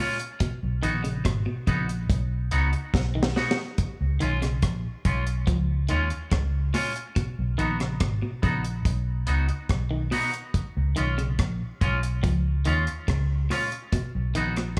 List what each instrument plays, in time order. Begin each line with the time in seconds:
0.00 clean electric guitar A#2 G#3 C#4 F4
0.20 closed hi-hat
0.40 clean electric guitar B2, kick, closed hi-hat
0.63 fingered electric bass B1
0.83 fingered electric bass A#1, clean electric guitar D#3 B3 D#4 F#4, closed hi-hat
1.04 clean electric guitar C#3, closed hi-hat
1.25 fingered electric bass G#1, clean electric guitar B2, kick, cross-stick, closed hi-hat
1.46 clean electric guitar B2
1.67 fingered electric bass A#1, clean electric guitar C#3 B3 D#4 F#4, kick, closed hi-hat
1.89 closed hi-hat
2.10 fingered electric bass B1, kick, closed hi-hat
2.51 fingered electric bass C#2, clean electric guitar B3 D#4 F#4, closed hi-hat
2.73 muted clean electric guitar stroke, closed hi-hat
2.94 fingered electric bass B1, kick, snare
3.15 clean electric guitar D#3
3.23 snare
3.36 clean electric guitar B2 B3 D#4 F#4, snare
3.51 snare
3.78 kick, closed hi-hat
4.01 fingered electric bass C#2
4.20 fingered electric bass B1, clean electric guitar D#3 G#3 C#4 F4, closed hi-hat
4.42 clean electric guitar C#3, cross-stick, closed hi-hat
4.62 fingered electric bass A#1, kick, cross-stick, closed hi-hat
5.05 fingered electric bass B1, clean electric guitar G#3 C#4 F4, kick, closed hi-hat
5.27 closed hi-hat
5.47 fingered electric bass C#2, clean electric guitar F3, kick, closed hi-hat
5.89 fingered electric bass D#2, clean electric guitar D#3 G#3 C#4 F4, closed hi-hat
6.10 muted clean electric guitar stroke, closed hi-hat
6.31 fingered electric bass C#2, clean electric guitar C#3, kick, cross-stick, closed hi-hat
6.74 clean electric guitar A#2 G#3 C#4 F4, cross-stick, open hi-hat
6.96 closed hi-hat
7.16 clean electric guitar B2, kick, closed hi-hat
7.39 fingered electric bass B1
7.58 fingered electric bass A#1, clean electric guitar D#3 B3 D#4 F#4, closed hi-hat
7.80 clean electric guitar C#3, cross-stick, closed hi-hat
8.00 fingered electric bass G#1, clean electric guitar B2, kick, cross-stick, closed hi-hat
8.22 clean electric guitar B2
8.42 fingered electric bass A#1, clean electric guitar C#3 B3 D#4 F#4, kick, closed hi-hat
8.65 closed hi-hat
8.85 fingered electric bass B1, kick, closed hi-hat
9.27 fingered electric bass C#2, clean electric guitar B3 D#4 F#4, closed hi-hat
9.48 muted clean electric guitar stroke, closed hi-hat
9.69 fingered electric bass B1, kick, cross-stick, closed hi-hat
9.91 clean electric guitar D#3
10.11 clean electric guitar B2 B3 D#4 F#4, open hi-hat
10.34 closed hi-hat
10.54 kick, closed hi-hat
10.77 fingered electric bass C#2
10.96 fingered electric bass B1, clean electric guitar D#3 G#3 C#4 F4, closed hi-hat
11.18 clean electric guitar C#3, closed hi-hat
11.39 fingered electric bass A#1, kick, cross-stick, closed hi-hat
11.81 fingered electric bass B1, clean electric guitar G#3 C#4 F4, kick, closed hi-hat
12.03 closed hi-hat
12.23 fingered electric bass C#2, clean electric guitar F3, kick, closed hi-hat
12.65 fingered electric bass D#2, clean electric guitar D#3 G#3 C#4 F4, closed hi-hat
12.87 muted clean electric guitar stroke, closed hi-hat
13.08 fingered electric bass C#2, clean electric guitar C#3, kick, cross-stick, closed hi-hat
13.50 clean electric guitar A#2 G#3 C#4 F4, cross-stick, open hi-hat
13.72 closed hi-hat
13.93 clean electric guitar B2, kick, closed hi-hat
14.15 fingered electric bass B1
14.35 fingered electric bass A#1, clean electric guitar D#3 B3 D#4 F#4, closed hi-hat
14.56 clean electric guitar A#2, cross-stick, closed hi-hat